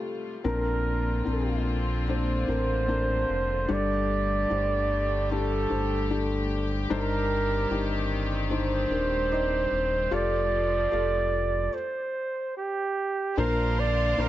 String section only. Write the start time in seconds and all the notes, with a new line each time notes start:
Already playing: C3 G3 A3 F4
0.45 D3 A#3 C4 F4
3.70 G3 A3 G4
6.92 D#3 C4
10.11 F3 A3
13.38 D3 A#3 C4 F4